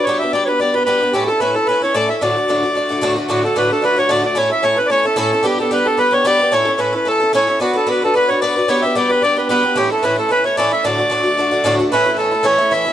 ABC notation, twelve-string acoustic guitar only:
X:1
M:4/4
L:1/8
Q:"Swing" 1/4=223
K:D
V:1 name="Twelve-string acoustic guitar"
[G,B,DG] [B,DG] [G,B,DG] [B,DG] [G,B,DG] [B,DG] [G,B,DG] [B,DG] | [A,,A,CEA] [CEA] [A,,A,CEA] [CEA] [A,CEA] [CEA] [A,,A,CEA] [CEA] | [D,,A,,D,A,DF] [D,A,DF] [D,,A,,D,A,DF] [D,A,DF] [D,A,DF] [D,A,DF] [D,,A,,D,A,DF] [D,A,DF] | [D,,A,,D,A,DF] [D,A,DF] [D,,A,,D,A,DF] [D,A,DF] [D,A,DF] [D,A,DF] [D,,A,,D,A,DF] [D,A,DF] |
[A,,A,CEA] [CEA] [A,,A,CEA] [CEA] [A,CEA] [CEA] [A,,A,CEA] [CEA] | [G,B,DG] [B,DG] [G,B,DG] [B,DG] [G,B,DG] [B,DG] [G,B,DG] [B,DG] | [A,,A,CEA] [CEA] [A,,A,CEA] [CEA] [A,CEA] [CEA] [A,,A,CEA] [CEA] | [B,DFB] [DFB] [B,DFB] [DFB] [B,DFB] [DFB] [B,DFB] [DFB] |
[G,B,DG] [B,DG] [G,B,DG] [B,DG] [G,B,DG] [B,DG] [G,B,DG] [B,DG] | [A,,E,A,CE] [A,CE] [A,,E,A,CE] [A,CE] [E,A,CE] [A,CE] [A,,E,A,CE] [A,CE] | [D,,A,,D,A,DF] [D,A,DF] [D,,A,,D,A,DF] [D,A,DF] [D,A,DF] [D,A,DF] [D,,A,,D,A,DF] [D,A,DF] | [A,,E,A,CE] [A,CE] [E,A,CE] [A,CE] [A,,E,A,CE] [A,CE] [E,A,CE] [A,CE] |]